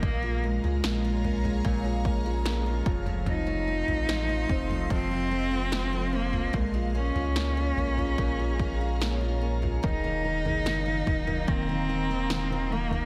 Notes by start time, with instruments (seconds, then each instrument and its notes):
Already playing: steel-string acoustic guitar A#3 D#4 F4
0.03 sub bass A#1, steel-string acoustic guitar A#2, grand piano A#3, cello A#3, ambient pad G#4 C#5 F5 A#5, kick, floor tom
0.23 steel-string acoustic guitar G#3, grand piano F4
0.44 cello G#3, grand piano A#3, steel-string acoustic guitar C#4
0.63 sub bass C#2, steel-string acoustic guitar G#3, grand piano F4, floor tom
0.84 sub bass A#1, grand piano A#3, steel-string acoustic guitar C#4, snare
1.05 steel-string acoustic guitar F4, grand piano F4
1.24 grand piano A#3, steel-string acoustic guitar C#4, floor tom
1.44 steel-string acoustic guitar G#3, grand piano F4, floor tom
1.65 sub bass A#1, steel-string acoustic guitar A#2, grand piano A#3, kick
1.85 steel-string acoustic guitar G#3, grand piano F4
2.05 grand piano A#3, steel-string acoustic guitar C#4, kick
2.26 steel-string acoustic guitar G#3, grand piano F4
2.46 grand piano A#3, steel-string acoustic guitar C#4, snare
2.66 steel-string acoustic guitar F4, grand piano F4
2.86 sub bass F1, steel-string acoustic guitar F2, grand piano F3, ambient pad A4 D#5 F5 C6, kick
3.06 grand piano F3, steel-string acoustic guitar A3, floor tom
3.26 steel-string acoustic guitar F2, grand piano F3, cello D#4, floor tom
3.47 grand piano F3, steel-string acoustic guitar A3
3.68 grand piano F3, steel-string acoustic guitar C4
3.88 sub bass A1, grand piano F3, steel-string acoustic guitar A3, floor tom
4.09 grand piano F3, steel-string acoustic guitar C4, snare
4.29 grand piano F3, steel-string acoustic guitar F4
4.49 sub bass F1, steel-string acoustic guitar C4, grand piano C4, kick, floor tom
4.70 grand piano F3, steel-string acoustic guitar A3, floor tom
4.90 sub bass F1, steel-string acoustic guitar F2, grand piano F3, cello C4, kick
5.10 grand piano F3, steel-string acoustic guitar A3
5.30 grand piano F3, steel-string acoustic guitar C4
5.51 grand piano F3, steel-string acoustic guitar A3
5.72 grand piano F3, steel-string acoustic guitar C4, snare
5.93 grand piano F3, steel-string acoustic guitar F4
6.12 cello A#3, grand piano C4, steel-string acoustic guitar C4
6.32 grand piano F3, steel-string acoustic guitar A3, floor tom
6.53 sub bass A#1, steel-string acoustic guitar A#2, cello G#3, grand piano A#3, ambient pad G#4 C#5 A#5, kick, floor tom
6.74 steel-string acoustic guitar G#3, grand piano F4
6.95 grand piano A#3, steel-string acoustic guitar C#4, cello C#4
7.15 sub bass C#2, steel-string acoustic guitar G#3, grand piano F4, floor tom
7.36 grand piano A#3, steel-string acoustic guitar C#4, snare
7.57 steel-string acoustic guitar F4
7.76 sub bass A#1, grand piano A#3, steel-string acoustic guitar C#4, floor tom
7.98 steel-string acoustic guitar G#3, grand piano F4, floor tom
8.18 sub bass A#1, steel-string acoustic guitar A#2, grand piano A#3, kick, floor tom
8.39 steel-string acoustic guitar G#3, grand piano F4
8.59 grand piano A#3, steel-string acoustic guitar C#4, kick
8.81 steel-string acoustic guitar G#3, grand piano F4
9.01 grand piano A#3, steel-string acoustic guitar C#4, snare
9.21 steel-string acoustic guitar F4, grand piano F4
9.41 grand piano A#3, steel-string acoustic guitar C#4
9.62 steel-string acoustic guitar G#3, grand piano F4, floor tom
9.83 sub bass D#1, steel-string acoustic guitar D#3, grand piano D#3, ambient pad F#3 D#5, cello D#4, kick, floor tom
10.04 grand piano D#3, steel-string acoustic guitar A#3
10.24 grand piano D#3, steel-string acoustic guitar D#4
10.45 sub bass F#1, grand piano D#3, steel-string acoustic guitar A#3, floor tom
10.65 grand piano D#3, steel-string acoustic guitar D#4, snare
10.86 grand piano D#3, steel-string acoustic guitar F4
11.06 sub bass D#1, grand piano D#3, steel-string acoustic guitar D#4, kick, floor tom
11.27 grand piano D#3, steel-string acoustic guitar A#3, floor tom
11.48 sub bass D#1, steel-string acoustic guitar D#3, grand piano A#3, cello C4, kick
11.68 grand piano D#3, steel-string acoustic guitar A#3
11.89 grand piano D#3, steel-string acoustic guitar D#4
12.10 grand piano D#3, steel-string acoustic guitar A#3
12.30 grand piano D#3, steel-string acoustic guitar D#4, snare
12.51 grand piano D#3, steel-string acoustic guitar F4
12.71 grand piano D#3, cello A#3, steel-string acoustic guitar D#4
12.91 grand piano D#3, steel-string acoustic guitar A#3, floor tom